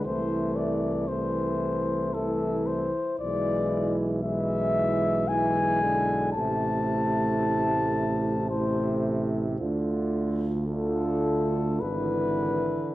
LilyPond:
<<
  \new Staff \with { instrumentName = "Cornet" } { \time 3/4 \key a \minor \tempo 4 = 56 c''8 d''8 c''4 a'8 c''8 | d''8. r16 e''4 gis''4 | a''2 c''8 r8 | r4 a'4 b'4 | }
  \new Staff \with { instrumentName = "French horn section" } { \time 3/4 \key a \minor e'4 e'4 e'4 | e'4 e'4 e'4 | e'2 e'4 | f'4 f'4 e'4 | }
  \new Staff \with { instrumentName = "Euphonium" } { \time 3/4 \key a \minor a4 a4 a8. r16 | gis4 gis4 gis4 | a2 a4 | a4 a4 e4 | }
  \new Staff \with { instrumentName = "Trombone" } { \clef bass \time 3/4 \key a \minor e4 e4 e8. r16 | e4 e4 e8 d8 | c2 c4 | d4 d4 d4 | }
  \new Staff \with { instrumentName = "Tuba" } { \clef bass \time 3/4 \key a \minor c,2~ c,8. r16 | b,,2. | a,,2. | d,2 gis,,4 | }
>>